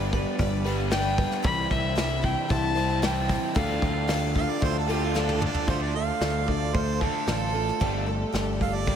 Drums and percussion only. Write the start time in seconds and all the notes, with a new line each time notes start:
0.13 kick, open hi-hat
0.39 kick, open hi-hat
0.66 open hi-hat
0.91 snare, open hi-hat
1.18 kick, open hi-hat
1.31 snare
1.44 kick, open hi-hat
1.71 kick, open hi-hat
1.98 snare, open hi-hat
2.24 kick, open hi-hat
2.50 kick, open hi-hat
2.77 open hi-hat
3.03 snare, open hi-hat
3.29 kick, open hi-hat
3.56 kick, open hi-hat
3.82 kick, open hi-hat
4.09 snare, open hi-hat
4.36 kick, open hi-hat
4.62 kick, open hi-hat
4.89 open hi-hat
5.16 snare
5.29 high tom
5.42 mid tom
5.54 floor tom
5.67 kick, open hi-hat
6.21 snare, open hi-hat
6.48 kick
6.75 kick, open hi-hat
7.01 kick
7.28 snare, open hi-hat
7.68 snare
7.81 kick, open hi-hat
8.34 snare, open hi-hat
8.61 kick
8.87 kick, open hi-hat